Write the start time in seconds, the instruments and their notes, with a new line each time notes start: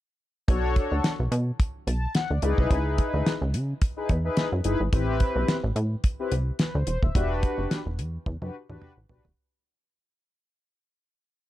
0.48 analog synth bass B1, analog polysynth D4 F#4 A4 C#5, kick, closed hi-hat
0.76 kick, closed hi-hat
0.92 analog synth bass D2
1.04 snare, closed hi-hat
1.19 analog synth bass B1
1.31 analog synth bass B2, closed hi-hat
1.60 kick, closed hi-hat
1.87 analog synth bass B1, analog polysynth A5, closed hi-hat
2.15 analog polysynth F#5, snare, closed hi-hat
2.30 analog synth bass D2, analog polysynth D5
2.42 analog synth bass C#2, analog polysynth D#4 E4 G#4 B4, closed hi-hat
2.58 analog synth bass C2, kick
2.70 analog synth bass C#2, kick, closed hi-hat
2.98 kick, closed hi-hat
3.14 analog synth bass D2
3.26 snare, closed hi-hat
3.41 analog synth bass C#2
3.54 analog synth bass C#3, closed hi-hat
3.82 kick, closed hi-hat
3.97 analog polysynth D#4 E4 G#4 B4
4.09 analog synth bass E2, kick, closed hi-hat
4.24 analog polysynth D#4 E4 G#4 B4
4.37 snare, closed hi-hat
4.52 analog synth bass F#2
4.64 analog synth bass G1, analog polysynth D#4 E4 G#4 B4, closed hi-hat
4.80 analog synth bass G#1
4.92 analog synth bass A1, analog polysynth C4 E4 G4 B4, kick, closed hi-hat
5.20 kick, closed hi-hat
5.36 analog synth bass B1
5.48 snare, closed hi-hat
5.63 analog synth bass A1
5.76 analog synth bass A2, closed hi-hat
6.04 kick, closed hi-hat
6.19 analog polysynth C4 E4 G4 B4
6.31 analog synth bass C2, closed hi-hat
6.59 analog polysynth B4, snare, closed hi-hat
6.75 analog synth bass D2, analog polysynth C5
6.87 analog synth bass E1, closed hi-hat
7.02 analog synth bass D#1, analog polysynth E5, kick
7.14 analog synth bass E1, analog polysynth D4 F#4 G4 B4, kick, closed hi-hat
7.43 kick, closed hi-hat
7.58 analog synth bass F#1
7.71 snare, closed hi-hat
7.86 analog synth bass E1
7.98 analog synth bass E2, closed hi-hat
8.26 analog synth bass E2, kick, high tom
8.41 analog synth bass F#2, analog polysynth D4 F#4 G4 B4, high tom
8.69 analog synth bass E2, analog polysynth D4 F#4 G4 B4, mid tom
8.82 mid tom
8.97 analog synth bass A1
9.09 analog synth bass B1, analog polysynth D4 F#4 G4 B4, floor tom
9.25 analog synth bass D#1, floor tom